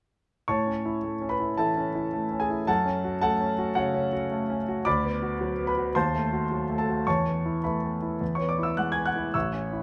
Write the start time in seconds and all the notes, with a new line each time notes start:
0.48 A2 C#5 A5 C#6
0.67 C#4
0.85 E4
1.04 A3
1.21 C#4
1.29 B4 B5
1.40 E4
1.57 E3 A4 E5 A5
1.77 C#4
1.95 E4
2.14 A3
2.31 C#4
2.40 G#4 G#5
2.50 E4
2.67 F#2 A4 F#5 A5
2.86 C#4
3.04 F#4
3.21 A3 A4 F#5 A5
3.41 C#4
3.58 F#4
3.75 C#3 F#4 C#5 F#5
3.94 C#4
4.13 F#4
4.31 A3
4.50 C#4
4.68 F#4
4.85 D2 D5 B5 D6
5.04 B3
5.22 F#4
5.41 F#3
5.59 B3
5.67 B4 B5
5.77 F#4
5.95 D#2 C5 A5 C6
6.15 A3
6.33 F#4
6.51 F#3
6.70 A3
6.78 A4 A5
6.89 F#4
7.07 E2 C#5 A5 C#6
7.27 B3
7.46 E4
7.64 A3 B4 E5 B5
7.84 B3
8.02 E4
8.21 E2
8.35 C#5 C#6
8.40 B3
8.49 D5 D6
8.59 E4
8.63 E5 E6
8.77 G#3 F#5 F#6
8.92 G#5 G#6
8.97 B3
9.06 F#5 F#6
9.16 E4
9.34 A1 E5 C#6 E6
9.53 C#4
9.72 E4